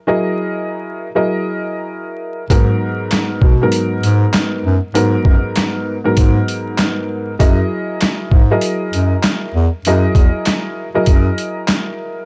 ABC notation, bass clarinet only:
X:1
M:4/4
L:1/16
Q:"Swing 16ths" 1/4=98
K:F#mix
V:1 name="Bass clarinet" clef=bass
z16 | G,,2 z4 B,,2 z2 G,,2 z2 F,, z | G,,2 F,, z4 z G,,2 z6 | F,,2 z4 G,,2 z2 F,,2 z2 E,, z |
F,,2 E,, z4 z F,,2 z6 |]